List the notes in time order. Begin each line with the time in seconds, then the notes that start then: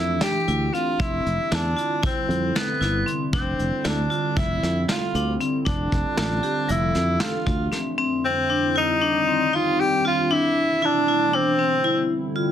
Already playing: F2 E4
0.21 G4, snare, closed hi-hat
0.48 D2 E4, closed hi-hat
0.73 C4 F4, closed hi-hat
0.99 F1 C4 E4, kick, closed hi-hat
1.26 F1, closed hi-hat
1.51 E2 D4 E4, snare, closed hi-hat
1.76 F4, closed hi-hat
2.03 C4 E4, kick, closed hi-hat
2.29 F2, closed hi-hat
2.56 B3 A4, snare, closed hi-hat
2.81 G1 E4, snare, closed hi-hat
3.06 C4, closed hi-hat
3.33 F1 C4 D4, kick, closed hi-hat
3.59 F1, closed hi-hat
3.84 D2 D4 E4, snare, closed hi-hat
4.10 F4, closed hi-hat
4.36 F1 E4, kick, closed hi-hat
4.63 F2, snare, closed hi-hat
4.88 F4, snare, closed hi-hat
5.15 D2 D4, closed hi-hat
5.40 C4, closed hi-hat
5.65 F1 D4, kick, closed hi-hat
5.92 F1, kick, closed hi-hat
6.17 A1 F4, snare, closed hi-hat
6.43 G4, closed hi-hat
6.68 F1 F3 E4, closed hi-hat
6.95 F2, snare, closed hi-hat
7.20 F4 A4, snare, closed hi-hat
7.46 D2 F4, kick, closed hi-hat
7.72 C4, snare, closed hi-hat
7.98 C4
8.25 C4
8.50 D4
8.76 D#4 E4
9.02 D4
9.28 C4
9.53 D#4 F4
9.80 G4
10.05 F4
10.31 D4 E4
10.82 D4 E4
11.08 E4
11.33 C4 D4
11.59 C4
11.84 E4
12.36 F4